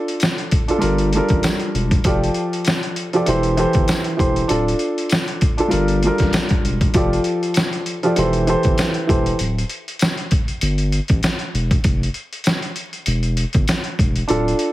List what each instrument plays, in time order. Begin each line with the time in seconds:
Already playing: grand piano D4 F4 A4
0.08 closed hi-hat
0.20 snare, closed hi-hat, tambourine
0.38 closed hi-hat
0.51 kick, closed hi-hat
0.68 grand piano D4 F4 A4, closed hi-hat
0.78 grand piano G3 D4 F4 A4 A#4, closed hi-hat
0.83 sub bass G1
0.98 closed hi-hat
1.13 grand piano G3 D4 F4 A4, closed hi-hat
1.17 grand piano A#4
1.29 sub bass A1, kick, closed hi-hat
1.43 snare, closed hi-hat, tambourine
1.59 closed hi-hat
1.74 sub bass E1, closed hi-hat
1.91 kick, closed hi-hat
2.04 sub bass F1, grand piano F3 F4 G4 A4 D5, kick, closed hi-hat
2.24 closed hi-hat
2.34 closed hi-hat
2.53 closed hi-hat
2.65 snare, closed hi-hat, tambourine
2.83 closed hi-hat
2.96 closed hi-hat
3.13 grand piano F3 F4 G4 A4 D5, closed hi-hat
3.26 sub bass E1, grand piano E3 E4 G4 A4 C5, closed hi-hat
3.43 closed hi-hat
3.57 grand piano E3 E4 G4 A4 C5, closed hi-hat
3.73 sub bass G1, kick, closed hi-hat
3.88 snare, closed hi-hat, tambourine
4.04 closed hi-hat
4.17 sub bass E1, grand piano E3 E4 G4 A4 C5, kick, closed hi-hat
4.36 closed hi-hat
4.48 sub bass D1, grand piano D4 F4 A4, closed hi-hat
4.68 closed hi-hat
4.79 closed hi-hat
4.98 closed hi-hat
5.09 snare, closed hi-hat, tambourine
5.28 closed hi-hat
5.41 kick, closed hi-hat
5.57 grand piano D4 F4 A4, closed hi-hat
5.68 grand piano G3 D4 F4 A4 A#4, closed hi-hat
5.72 sub bass G1
5.88 closed hi-hat
6.03 grand piano G3 D4 F4 A4, closed hi-hat
6.07 grand piano A#4
6.18 sub bass A1, kick, snare, closed hi-hat
6.33 snare, closed hi-hat, tambourine
6.49 kick, closed hi-hat
6.64 sub bass E1, closed hi-hat
6.81 kick, closed hi-hat
6.94 sub bass F1, grand piano F3 F4 G4 A4 D5, kick, closed hi-hat
7.13 closed hi-hat
7.24 closed hi-hat
7.43 closed hi-hat
7.54 snare, closed hi-hat, tambourine
7.73 closed hi-hat
7.86 closed hi-hat
8.03 grand piano F3 F4 G4 A4 D5, closed hi-hat
8.16 sub bass E1, grand piano E3 E4 G4 A4 C5, closed hi-hat
8.33 closed hi-hat
8.47 grand piano E3 E4 G4 A4 C5, closed hi-hat
8.63 sub bass G1, kick, closed hi-hat
8.78 snare, closed hi-hat, tambourine
8.94 closed hi-hat
9.07 sub bass E1, grand piano E3 E4 G4 A4 C5, kick, closed hi-hat
9.26 closed hi-hat
9.39 sub bass D1, closed hi-hat
9.58 closed hi-hat
9.69 closed hi-hat
9.88 closed hi-hat
9.99 snare, closed hi-hat, tambourine
10.17 closed hi-hat
10.31 kick, closed hi-hat
10.48 closed hi-hat
10.61 sub bass G1, closed hi-hat
10.78 closed hi-hat
10.92 closed hi-hat
11.08 sub bass A1, kick, closed hi-hat
11.23 snare, closed hi-hat, tambourine
11.39 closed hi-hat
11.54 sub bass E1, closed hi-hat
11.71 kick, closed hi-hat
11.84 sub bass F1, kick, closed hi-hat
12.03 closed hi-hat
12.14 closed hi-hat
12.33 closed hi-hat
12.44 snare, closed hi-hat, tambourine
12.62 closed hi-hat
12.76 closed hi-hat
12.93 closed hi-hat
13.06 sub bass E1, closed hi-hat
13.23 closed hi-hat
13.37 closed hi-hat
13.53 sub bass G1, kick, closed hi-hat
13.68 snare, closed hi-hat, tambourine
13.84 closed hi-hat
13.99 sub bass E1, kick, closed hi-hat
14.16 closed hi-hat
14.28 sub bass D1, grand piano D4 F4 A4, closed hi-hat
14.48 closed hi-hat
14.59 closed hi-hat